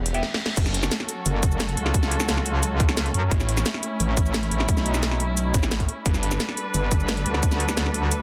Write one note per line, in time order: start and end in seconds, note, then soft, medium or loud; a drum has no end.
0.00 0.23 E1 medium
0.00 0.21 E3 medium
0.00 0.21 B3 medium
0.00 0.21 G4 medium
0.00 0.20 F#5 medium
0.00 reverse cymbal medium
0.06 closed hi-hat medium
0.14 0.23 B3 medium
0.14 0.23 E4 medium
0.14 0.23 G4 medium
0.14 closed hi-hat soft
0.23 snare medium
0.34 snare medium
0.46 snare medium
0.57 0.90 F#1 loud
0.57 3.29 F#3 medium
0.57 6.02 C#4 medium
0.57 3.29 F#4 medium
0.57 3.29 A4 medium
0.57 kick loud
0.57 closed hi-hat loud
0.57 crash loud
0.57 shaker soft
0.66 snare soft
0.66 shaker soft
0.74 closed hi-hat medium
0.83 snare medium
0.83 shaker medium
0.91 snare loud
0.91 closed hi-hat loud
0.91 shaker medium
1.00 snare soft
1.09 closed hi-hat medium
1.09 shaker soft
1.26 1.76 F#1 loud
1.26 closed hi-hat loud
1.26 shaker medium
1.43 kick loud
1.43 closed hi-hat medium
1.43 shaker medium
1.51 shaker soft
1.60 snare loud
1.60 closed hi-hat loud
1.60 shaker soft
1.69 closed hi-hat soft
1.77 3.13 C#2 loud
1.77 closed hi-hat medium
1.86 snare medium
1.94 kick loud
1.94 closed hi-hat loud
1.94 shaker soft
2.03 snare soft
2.03 shaker soft
2.11 closed hi-hat medium
2.20 snare medium
2.20 shaker medium
2.29 snare loud
2.29 closed hi-hat medium
2.29 shaker medium
2.37 snare soft
2.46 closed hi-hat medium
2.46 shaker soft
2.63 closed hi-hat loud
2.63 shaker soft
2.80 kick loud
2.80 closed hi-hat medium
2.80 shaker medium
2.89 snare medium
2.89 shaker soft
2.97 snare loud
2.97 closed hi-hat loud
2.97 shaker soft
3.06 closed hi-hat soft
3.14 3.30 F#2 loud
3.14 closed hi-hat medium
3.31 3.64 A1 loud
3.31 6.03 A3 medium
3.31 6.03 E4 medium
3.31 kick loud
3.31 closed hi-hat medium
3.31 shaker soft
3.40 snare soft
3.40 shaker soft
3.49 closed hi-hat medium
3.57 snare medium
3.57 shaker medium
3.66 snare loud
3.66 closed hi-hat medium
3.66 shaker soft
3.74 snare soft
3.83 closed hi-hat medium
3.83 shaker soft
4.00 4.50 A1 loud
4.00 closed hi-hat medium
4.00 shaker soft
4.17 kick loud
4.17 closed hi-hat medium
4.17 shaker medium
4.26 shaker soft
4.34 snare loud
4.34 closed hi-hat medium
4.34 shaker soft
4.43 closed hi-hat soft
4.51 4.67 A1 medium
4.51 closed hi-hat medium
4.60 snare soft
4.69 5.53 B1 medium
4.69 kick loud
4.69 closed hi-hat medium
4.69 shaker soft
4.77 snare soft
4.77 shaker soft
4.86 closed hi-hat medium
4.94 snare medium
4.94 shaker medium
5.03 snare loud
5.03 closed hi-hat medium
5.03 shaker soft
5.11 snare soft
5.20 closed hi-hat medium
5.20 shaker soft
5.37 closed hi-hat medium
5.37 shaker soft
5.54 5.87 A1 loud
5.54 kick loud
5.54 closed hi-hat medium
5.54 shaker medium
5.63 snare soft
5.63 shaker soft
5.71 snare loud
5.71 closed hi-hat medium
5.71 shaker soft
5.80 kick medium
5.80 closed hi-hat soft
5.89 closed hi-hat medium
6.06 6.39 G1 loud
6.06 8.22 G3 medium
6.06 8.22 D4 medium
6.06 8.22 A4 medium
6.06 8.22 B4 medium
6.06 kick loud
6.06 closed hi-hat medium
6.06 shaker medium
6.14 snare soft
6.14 shaker soft
6.23 closed hi-hat medium
6.31 snare medium
6.31 shaker medium
6.40 snare loud
6.40 closed hi-hat medium
6.40 shaker medium
6.49 snare soft
6.57 closed hi-hat medium
6.57 shaker soft
6.74 7.24 G1 loud
6.74 closed hi-hat medium
6.74 shaker medium
6.91 kick loud
6.91 closed hi-hat medium
6.91 shaker medium
7.00 shaker soft
7.09 snare loud
7.09 closed hi-hat medium
7.09 shaker medium
7.17 closed hi-hat soft
7.26 8.22 D2 loud
7.26 closed hi-hat medium
7.34 snare soft
7.43 kick loud
7.43 closed hi-hat loud
7.43 shaker medium
7.51 snare soft
7.51 shaker soft
7.60 closed hi-hat medium
7.69 snare medium
7.69 shaker medium
7.77 snare loud
7.77 closed hi-hat medium
7.77 shaker medium
7.86 snare soft
7.94 closed hi-hat medium
7.94 shaker soft
8.11 closed hi-hat medium
8.11 shaker medium